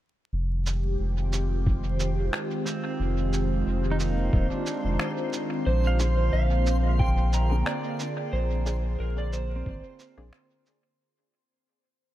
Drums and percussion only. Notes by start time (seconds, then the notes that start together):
0.66 cabasa
1.33 cabasa
1.66 kick
2.00 cabasa
2.33 finger snap
2.66 cabasa
3.33 cabasa
4.00 cabasa
4.33 kick
4.66 cabasa
4.99 finger snap
5.33 cabasa
6.00 cabasa
6.66 cabasa
7.00 kick
7.33 cabasa
7.66 finger snap
8.00 cabasa
8.66 cabasa
9.33 cabasa
9.66 kick
9.99 cabasa
10.33 finger snap
10.66 cabasa